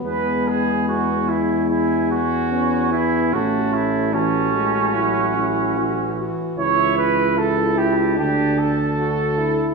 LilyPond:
<<
  \new Staff \with { instrumentName = "Trumpet" } { \time 4/4 \key a \major \tempo 4 = 74 gis''2 gis''4 gis''4 | a''4 a''4 fis''4. r8 | \key d \major e''4 a''2. | }
  \new Staff \with { instrumentName = "Trumpet" } { \time 4/4 \key a \major b'8 gis'8 fis'8 e'8 e'8 fis'4 e'8 | fis'8 e'8 cis'2~ cis'8 r8 | \key d \major cis''8 b'8 a'8 g'8 g'8 a'4. | }
  \new Staff \with { instrumentName = "French horn" } { \time 4/4 \key a \major b2~ b8 r8 b4 | cis'4 fis'4 e'8 e'8 fis'8 fis'8 | \key d \major e'2 d'8 r8 fis'8 e'8 | }
  \new Staff \with { instrumentName = "Trombone" } { \clef bass \time 4/4 \key a \major gis2~ gis8 r8 cis'8 b8 | a4 e8 gis8 fis4 e4~ | \key d \major e4 e'4 d'4. r8 | }
  \new Staff \with { instrumentName = "Bass trombone" } { \clef bass \time 4/4 \key a \major e,1 | a,,2.~ a,,8 r8 | \key d \major cis,2 d,2 | }
>>